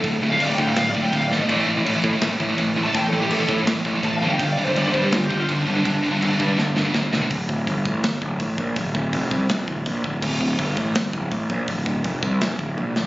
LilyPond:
<<
  \new Staff \with { instrumentName = "Lead electric guitar" } { \time 4/4 \key g \dorian \tempo 4 = 165 \tuplet 3/2 { r4 f''8 d''8 g''8 f''8 f''8 d''8 g''8 f''8 d''4 } | r2. \tuplet 3/2 { r4 a''8 } | \tuplet 3/2 { g''8 a'8 g'8 } a'8 r4. \tuplet 3/2 { a''8 f''8 g''8 } | \tuplet 3/2 { f''8 d''8 c''8 d''8 c''8 g'8 f'8 g'8 f'8 d'8 d'4~ } |
d'2~ d'8 r4. | r1 | r1 | r1 |
r1 | }
  \new Staff \with { instrumentName = "Distorted electric guitar" } { \clef bass \time 4/4 \key g \dorian <d, a,>8 <d, a,>16 <d, a,>16 <d, a,>16 <d, a,>16 <d, a,>16 <d, a,>16 <d, a,>8 <d, a,>16 <d, a,>16 <d, a,>8 <d, a,>16 <d, a,>16 | <a, e a>8 <a, e>16 <a, e>16 <a, e>16 <a, e>16 <a, e>16 <a, e>16 <a, e>8 <a, e>16 <a, e>16 <a, e>8 <a, e>16 <a, e>16 | <a, e>8 <a, e>16 <a, e>16 <a, e>16 <a, e>16 <a, e>16 <a, e>16 <a, e>8 <a, e>16 <a, e>16 <a, e>8 <g, d g>16 <g, d>16 | <g, d>8 <g, d>16 <g, d>16 <g, d>16 <g, d>16 <g, d>16 <g, d>16 <g, d>8 <g, d>16 <g, d>16 <g, d>8 <g, d>16 <g, d>16 |
<g, d>8 <g, d>16 <g, d>16 <g, d>16 <g, d>16 <g, d>16 <g, d>16 <g, d>8 <g, d>16 <g, d>16 <g, d>8 <g, d>16 <g, d>16 | r1 | r1 | r1 |
r1 | }
  \new Staff \with { instrumentName = "Distorted electric guitar" } { \clef bass \time 4/4 \key g \dorian <d, a,>8 <d, a,>16 <d, a,>16 <d, a,>16 <d, a,>16 <d, a,>16 <d, a,>16 <d, a,>8 <d, a,>16 <d, a,>16 <d, a,>8 <d, a,>16 <d, a,>16 | <a, e a>8 <a, e>16 <a, e>16 <a, e>16 <a, e>16 <a, e>16 <a, e>16 <a, e>8 <a, e>16 <a, e>16 <a, e>8 <a, e>16 <a, e>16 | <a, e>8 <a, e>16 <a, e>16 <a, e>16 <a, e>16 <a, e>16 <a, e>16 <a, e>8 <a, e>16 <a, e>16 <a, e>8 <g, d g>16 <g, d>16 | <g, d>8 <g, d>16 <g, d>16 <g, d>16 <g, d>16 <g, d>16 <g, d>16 <g, d>8 <g, d>16 <g, d>16 <g, d>8 <g, d>16 <g, d>16 |
<g, d>8 <g, d>16 <g, d>16 <g, d>16 <g, d>16 <g, d>16 <g, d>16 <g, d>8 <g, d>16 <g, d>16 <g, d>8 <g, d>16 <g, d>16 | r1 | r1 | r1 |
r1 | }
  \new Staff \with { instrumentName = "Picked electric bass" } { \clef bass \time 4/4 \key g \dorian d,,8 d,,8 d,,8 d,8 d,,8 d,,8 d,,8 gis,,8 | a,,8 a,,8 a,,8 a,8 a,,8 a,,8 a,,8 a,,8 | a,,8 a,,8 a,,8 a,8 a,,8 a,,8 a,,8 g,,8 | g,,8 g,,8 g,,8 g,8 g,,8 g,,8 g,,8 g,,8 |
g,,8 g,,8 g,,8 g,8 g,,8 g,,8 g,,8 e,,8 | d,,8 d,,8 g,,8 a,,8 g,,8 d,,8 a,,8 bes,,8 | d,,8 d,,8 f,,8 c,8 f,,8 d,,8 bes,,8 d,,8 | d,,8 d,,8 g,,8 a,,8 g,,8 d,,8 a,,8 bes,,8 |
d,,8 d,,8 f,,8 c,8 f,,8 d,,8 bes,,8 d,,8 | }
  \new DrumStaff \with { instrumentName = "Drums" } \drummode { \time 4/4 <cymc bd>4 cymc8 bd8 <cymc sn>8 bd8 <cymc bd>8 sn8 | <cymc bd>4 cymc8 bd8 <cymc sn>8 bd8 <cymc bd>4 | <cymc bd>4 cymc8 bd8 <cymc sn>8 bd8 <cymc bd>4 | <cymc bd>4 cymc8 bd8 <cymc sn>8 bd8 <cymc bd>4 |
<cymc bd>4 cymc8 bd8 sn8 sn8 <bd sn>8 sn8 | <hho bd>8 bd8 <hho bd>8 bd8 <hho sn>8 bd8 <hho bd>8 bd8 | <hho bd>8 bd8 <hho bd>8 bd8 <hho sn>8 bd8 <hho bd>8 bd8 | <cymc bd>8 bd8 <hho bd>8 bd8 <hho sn>8 bd8 <hho bd>8 bd8 |
<hho bd>8 bd8 <hho bd>8 bd8 <hho sn>8 bd8 tommh8 sn8 | }
>>